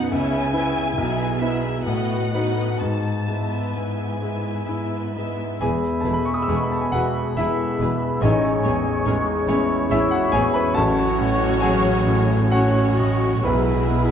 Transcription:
Already playing: F#2 B3 D#4 F#4 B4 F#5
0.11 C#2 C#3 B3 C#4 E4 E5 G#5
0.54 B3 C#4 E4 B4 E5
0.97 B1 B2 B3 E4 G#4 E5
1.40 B3 E4 G#4 B4 E5
1.85 A2 B3 F#4 B4 D#5 F#5
2.32 B3 D#4 F#4 B4 D#5
2.80 G#2 A5
3.27 G#3 B3 E4 B4 E5
3.75 G#2 B3 G#5
4.22 G#3 B3 E4 B4 E5
4.69 G#2 E4
5.14 G#3 B3 E4 B4 E5
5.60 E1 E2 G#3 B3 E4 G#4 B4 E5 G#5 B5
6.01 G#4 A4 B4 A5
6.05 E1 E2 B2 E4
6.13 B5
6.25 C#6
6.34 D#6
6.42 E6
6.48 E1 E2 G#3 B3 E4 G#4 B4 D#6
6.56 C#6
6.63 B5
6.72 A5
6.81 G#5
6.92 E1 E2 B2 E4 F#4 G#4 B4 F#5
7.36 E1 E2 E4 G#4 B4 E5 B5
7.79 E1 E2 B2 E4 G#4 B4
8.21 A1 A2 C#4 D#4 G#4 C#5 D#5 C#6
8.63 A1 E2 A2 C#4 G#4 C#5
9.05 A1 A2 G#3 C#4 D#4 G#4 C#5
9.47 A1 E2 A2 C#4 E4 G#4 C#5
9.90 A1 A2 C#4 E4 G#4 C#5 E5 C#6
10.11 F#4 F#5
10.32 A1 E2 A2 C#4 G#4 C#5 G#5
10.54 B4 B5
10.74 A1 A2 F#3 C#4 F#4 A4 C#5 A5 C#6
11.20 A2
11.61 F#3 G#4 G#5
12.07 A2
12.51 C#4 F#4 C#5 F#5 C#6
12.98 A2 D#5
13.43 B1 B2 G#3 B3 E4 G#4 B4 E5 B5
13.91 B2

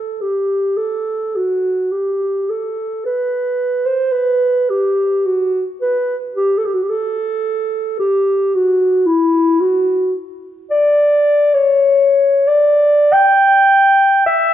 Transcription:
Already playing: A4
0.22 G4
0.77 A4
1.36 F#4
1.91 G4
2.50 A4
3.06 B4
3.86 C5
4.12 B4
4.70 G4
5.26 F#4
5.81 B4
6.36 G4
6.58 A4
6.66 G4
6.74 F#4
6.82 G4
6.90 A4
7.99 G4
8.55 F#4
9.07 E4
9.61 F#4
10.71 D5
11.54 C#5
12.47 D5
13.13 G5
14.26 E5

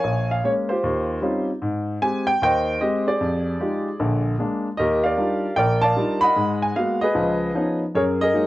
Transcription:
Already playing: C#5 F5 G#5
0.04 A#1
0.31 F5
0.44 G#3 A#3 C#4 C#5
0.69 F4 G4 C5
0.84 D#2
1.22 G3 C4 C#4 D#4 F4
1.62 G#2
2.02 G#3 C4 G4 G#5
2.27 G5
2.42 D#2 C5 D#5 G5
2.81 G#3 C4 G4 D#5
3.07 G4 G#4 D5
3.21 F2
3.60 G#3 D#4 F4 G4
3.99 A#1 D3
4.39 G#3 A#3 D4
4.77 D#2 G4 A#4 D#5
5.04 A#4 D5 F5
5.18 G3 D4 D#4 F4
5.56 A#1 A#4 D5 G5
5.81 D5 F5 A5
5.96 G3 D4 D#4 F4
6.21 D#5 F#5 B5
6.36 G#2 G#3
6.62 G#5
6.75 G#3 A#3 B3 F#4 F5
7.01 G#4 B4 D#5
7.15 C#2 F3
7.55 F3 B3 C#4 D#4
7.95 F#2 G#4 A#4 C#5
8.21 G#4 A#4 D#5
8.34 F#3 G#3 A#3 D#4

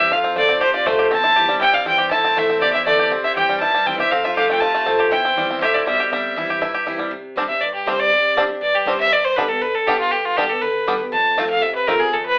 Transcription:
Already playing: G3 C4 E4 E5
0.00 G4
0.12 F2 F4 F5
0.24 C4
0.35 F3 A3 C4 F4 D5
0.48 C4 F4
0.61 C3 G4 C5
0.74 F4 D5
0.85 F3 A3 C4 F4 C5
0.99 G4
1.11 E2 C4 A5
1.24 E4
1.36 E3 G3 C4 E4 G4
1.49 G3 C4 E4
1.61 C3 E4 G5
1.73 G3 F5
1.85 E3 G3 C4 E4 G5
1.98 G4
2.11 A2 E4 A5
2.24 C4
2.36 E3 A3 C4 E4 E5
2.50 C4
2.61 E2 G4 D5
2.73 E4 E5
2.86 E3 A3 C4 E4 D5
2.99 G4
3.10 C3 C4
3.24 E4 E5
3.35 E3 G3 C4 E4 G4 G5
3.49 G3
3.60 G2 E4 A5
3.74 G3
3.86 E3 G3 C4 E4 G5
3.98 C4 E4 G4 E5
4.11 F2 C4 F5
4.24 F4 E5
4.36 F3 A3 C4 F4 G4 F5
4.49 A3 G5
4.60 C3 F4 A5
4.74 A3
4.86 F3 A3 C4 F4
5.00 G4
5.11 E2 E4 G5
5.25 C4
5.36 E3 G3 C4 E4
5.48 C4 E4
5.61 A2 G4 E5
5.74 E4 D5
5.86 B2 G3 E5
6.00 G4
6.12 C3 G3 E5
6.36 E3 G3 C4 E4
6.50 G4
6.61 G2 E4
6.74 G4
6.86 E3 G3 C4 E4
6.98 G3 C4 E4
7.11 C3
7.36 G3 C4 D4 G4
7.49 D4 G4 E5
7.62 G2 D5
7.74 G4
7.86 G3 C4 D4 G4 C5
7.99 D5
8.12 C3
8.36 G3 C4 D4 G4
8.48 D4 G4
8.61 G2 D5
8.75 G4
8.85 G3 C4 D4 G4 C5
9.01 E5
9.11 G2 D5
9.25 C5
9.36 D3 G3 B3 D4 G4 B4
9.49 B3 G4 A4
9.61 D3 B4
9.75 A4
9.86 D3 G3 B3 D4 G4
9.99 B3 F4 G4
10.12 G2 G4
10.25 F4
10.37 D3 G3 B3 D4 G4
10.49 B3 G4 A4
10.61 D3 B4
10.87 D3 G3 B3 D4 G4
11.00 B3 G4
11.12 F2 A5
11.36 F3 A3 C4 F4
11.50 F5
11.62 C3 E5
11.75 B4
11.87 F3 A3 C4 F4 A#4
11.99 C4 F4 G#4
12.13 F2 A4
12.26 B4

